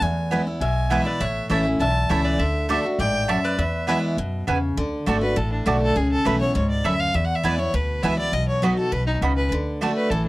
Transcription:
0.01 upright bass E2, steel-string acoustic guitar E2, resonator guitar played with a steel bar E5, fiddle G#5
0.31 steel-string acoustic guitar E3 G#3 B3 E4, mandolin B3 E4 B4 G#5
0.47 steel-string acoustic guitar B3 E4
0.61 upright bass B1, steel-string acoustic guitar B2, resonator guitar played with a steel bar E5, fiddle G#5
0.90 steel-string acoustic guitar E3 G#3 B3 E4, mandolin B3 E4 B4 G#5, resonator guitar played with a steel bar B4, fiddle E5
1.05 steel-string acoustic guitar B3 E4, resonator guitar played with a steel bar B4, fiddle D5
1.21 upright bass A1, steel-string acoustic guitar A2, resonator guitar played with a steel bar C#5, fiddle E5
1.50 upright bass A1, steel-string acoustic guitar E3 A3 C#4 E4, mandolin A3 E4 C#5 A5, resonator guitar played with a steel bar C#5, fiddle E5
1.65 steel-string acoustic guitar C#4 E4
1.80 upright bass B1, steel-string acoustic guitar E2, resonator guitar played with a steel bar E5, fiddle A5
2.09 upright bass C#2, steel-string acoustic guitar E3 A3 C#4 E4, mandolin A3 E4 C#5 A5, resonator guitar played with a steel bar C#5, fiddle E5
2.25 resonator guitar played with a steel bar B4, fiddle D5
2.39 upright bass D2, steel-string acoustic guitar D3, resonator guitar played with a steel bar A4, fiddle E5
2.69 steel-string acoustic guitar D3 A3 D4 F#4, mandolin A3 F#4 D5 A5, resonator guitar played with a steel bar A4, fiddle E5
2.84 steel-string acoustic guitar D4 F#4
2.99 upright bass A1, steel-string acoustic guitar G#2, resonator guitar played with a steel bar D5, fiddle G5
3.28 steel-string acoustic guitar F#2, mandolin A3 F#4 D5 A5, resonator guitar played with a steel bar A4, fiddle E5
3.45 resonator guitar played with a steel bar B4, fiddle D5
3.58 upright bass E2, steel-string acoustic guitar E2, resonator guitar played with a steel bar B4, fiddle E5
3.87 steel-string acoustic guitar E3 G#3 B3 E4, mandolin B3 E4 B4 G#5, resonator guitar played with a steel bar B4, fiddle E5
4.17 upright bass F#2, steel-string acoustic guitar B2
4.47 upright bass E2, steel-string acoustic guitar C#3, mandolin B3 E4 B4 G#5
4.77 upright bass D2, steel-string acoustic guitar D3
5.06 upright bass G#1, steel-string acoustic guitar D3 A3 D4 F#4, mandolin A3 F#4 D5 A5
5.21 steel-string acoustic guitar D4 F#4, fiddle B4
5.36 upright bass A1, steel-string acoustic guitar A2, fiddle A4
5.52 fiddle D4
5.66 upright bass B1, steel-string acoustic guitar D3 A3 D4 F#4, mandolin A3 F#4 D5 A5, fiddle F#4
5.82 fiddle A4
5.96 upright bass C#2, steel-string acoustic guitar C#3, fiddle G#4
6.12 fiddle A4
6.25 upright bass B1, steel-string acoustic guitar E3 A3 B3 E4, mandolin C#4 A4 E5 B5, fiddle B4
6.40 steel-string acoustic guitar B3 E4, fiddle C#5
6.55 upright bass C#2, steel-string acoustic guitar G#2, fiddle C#5
6.70 fiddle D5
6.84 upright bass D2, steel-string acoustic guitar F#2, mandolin C#4 A4 E5 B5, fiddle E5
7.00 fiddle F5
7.14 steel-string acoustic guitar E2, upright bass E2, fiddle E5
7.25 fiddle F#5
7.35 fiddle E5
7.43 upright bass E2, steel-string acoustic guitar E3 G#3 B3 E4, mandolin B3 E4 B4 G#5, fiddle D5
7.58 steel-string acoustic guitar B3 E4, fiddle C#5
7.74 upright bass D2, steel-string acoustic guitar B2, fiddle B4
8.03 upright bass C#2, steel-string acoustic guitar E3 G#3 B3 E4, mandolin B3 E4 B4 G#5, fiddle E5
8.18 steel-string acoustic guitar B3 E4, fiddle D5
8.32 upright bass B1, steel-string acoustic guitar B2, fiddle D#5
8.48 fiddle C#5
8.62 steel-string acoustic guitar F#3 B3 D#4 F#4, mandolin B3 F#4 D#5 B5, fiddle B4
8.77 steel-string acoustic guitar D#4 F#4, fiddle A4
8.92 upright bass B1, steel-string acoustic guitar B2, fiddle B4
9.07 fiddle D#4
9.21 upright bass C#2, steel-string acoustic guitar C#3, mandolin B3 F#4 D#5 B5
9.37 fiddle B4
9.51 upright bass D2, steel-string acoustic guitar D3
9.81 steel-string acoustic guitar D3 A3 D4 F#4, mandolin A3 F#4 D5 A5
9.96 fiddle B4
10.10 upright bass A1, steel-string acoustic guitar E3, fiddle A4

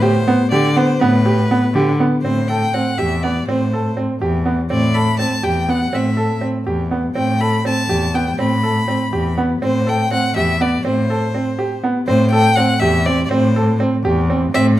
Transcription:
Already playing: cello A2
0.02 grand piano G4, violin C5
0.28 grand piano B3
0.51 cello D3, grand piano G4, violin D5
0.76 grand piano B3, violin C5
1.00 cello A2, grand piano B3, violin B4
1.26 grand piano G4
1.51 grand piano B3
1.74 cello D3, grand piano G4
2.00 grand piano B3
2.23 cello A2, grand piano C4, violin C5
2.48 grand piano A4, violin G5
2.74 grand piano C4, violin F#5
2.98 cello E2, grand piano G4, violin E5
3.23 grand piano B3, violin D5
3.46 cello A2, grand piano C4, violin C5
3.73 grand piano A4
3.97 grand piano C4
4.21 cello E2, grand piano G4
4.46 grand piano B3
4.70 cello A2, grand piano C4, violin D5
4.95 grand piano A4, violin B5
5.19 grand piano C4, violin A5
5.43 cello E2, grand piano G4, violin G5
5.69 grand piano B3, violin F#5
5.92 cello A2, grand piano C4, violin E5
6.17 grand piano A4
6.41 grand piano C4
6.66 cello E2, grand piano G4
6.91 grand piano B3
7.14 cello A2, grand piano C4, violin G5
7.41 grand piano A4, violin B5
7.65 grand piano C4, violin A5
7.88 cello E2, grand piano G4
8.14 grand piano B3, violin G5
8.37 cello A2, grand piano C4, violin B5
8.63 grand piano A4
8.88 grand piano C4
9.12 cello E2, grand piano G4
9.38 grand piano B3
9.61 cello A2, grand piano C4, violin C5
9.87 grand piano A4, violin G5
10.11 grand piano C4, violin F#5
10.34 cello E2, grand piano G4, violin E5
10.61 grand piano B3, violin D5
10.83 cello A2, grand piano C4, violin C5
11.10 grand piano A4
11.35 grand piano C4
11.59 grand piano G4
11.84 grand piano B3
12.07 cello A2, grand piano C4, violin C5
12.31 grand piano A4, violin G5
12.56 grand piano C4, violin F#5
12.80 cello E2, grand piano G4, violin E5
13.06 grand piano C4, violin D5
13.26 violin C5 D5
13.31 cello A2, grand piano C4
13.56 grand piano A4
13.80 grand piano C4
14.04 cello E2, grand piano G4
14.30 grand piano C4
14.53 cello A2, grand piano C4, violin E5

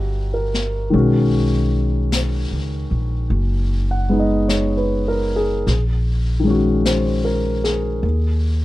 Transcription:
Already playing: upright bass G1, grand piano D3 G3 C4 E4 F#4 G4 E5 F#5 A#5
0.34 grand piano A#4
0.54 snare
0.90 upright bass B1, grand piano D#3 G#3 C#4, brush sweep
0.96 grand piano F#4
2.12 brush sweep, snare, hi-hat pedal
2.51 upright bass C#2
2.91 upright bass A#1
3.30 upright bass F#1, brush sweep
3.91 grand piano F#5
4.09 grand piano G#3 B3 D#4
4.19 grand piano D#5
4.48 grand piano C#5, brush sweep, snare, hi-hat pedal
4.77 grand piano B4
5.08 grand piano A#4
5.36 grand piano G#4
5.67 upright bass A#1, brush sweep, snare
6.40 grand piano D#3 G#3
6.47 grand piano C#4 F#4
6.85 grand piano C5, brush sweep, snare, hi-hat pedal
7.25 grand piano A#4
7.64 grand piano G#4, snare
8.03 upright bass D#2, brush sweep

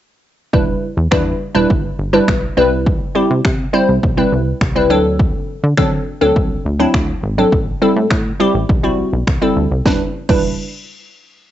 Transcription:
0.53 analog synth bass E1, synth pluck G3 D4 E4 B4, kick
0.97 analog synth bass E2
1.11 analog synth bass E2, synth pluck G3 D4 E4 B4, finger snap, kick
1.55 analog synth bass E1, synth pluck G3 D4 E4 B4
1.70 analog synth bass G1, kick
1.99 analog synth bass G1
2.13 synth pluck G3 D4 E4 B4
2.28 analog synth bass B1, finger snap, kick
2.57 analog synth bass C2, synth pluck G3 C4 E4 B4
2.86 kick
3.15 synth pluck G3 C4 E4 G4
3.30 analog synth bass C3
3.45 analog synth bass C3, finger snap, kick
3.73 synth pluck G3 C4 E4 C5
3.89 analog synth bass C2
4.03 analog synth bass B1, kick
4.17 synth pluck G3 C4 E4 B4
4.32 analog synth bass C2
4.61 analog synth bass C2, finger snap, kick
4.75 synth pluck G3 C4 E4 B4
4.90 analog synth bass D2, synth pluck F#3 C4 D4 A4
5.19 kick
5.64 analog synth bass D3
5.78 analog synth bass D3, synth pluck F#3 C4 D4 A4, finger snap, kick
6.21 analog synth bass D2, synth pluck F#3 C4 D4 A4
6.36 analog synth bass C2, kick
6.65 analog synth bass D2
6.80 synth pluck F#3 C4 D4 E4
6.94 analog synth bass D2, finger snap, kick
7.23 analog synth bass G#1
7.38 synth pluck F#3 C4 D4 A4
7.52 analog synth bass A1, kick
7.82 synth pluck G3 C4 E4 A4
7.96 analog synth bass A2
8.11 analog synth bass A2, finger snap, kick
8.40 synth pluck G3 C4 E4 G4
8.54 analog synth bass A1
8.69 analog synth bass B1, kick
8.83 synth pluck G3 C4 E4 F#4
8.98 analog synth bass B1
9.13 analog synth bass B1
9.27 analog synth bass C2, finger snap, kick
9.41 synth pluck G3 C4 E4 A4
9.56 analog synth bass D2
9.71 analog synth bass C2
9.85 analog synth bass E1, synth pluck G3 D4 E4 B4, kick, snare
10.29 analog synth bass E1, synth pluck G3 D4 E4 B4, kick, crash

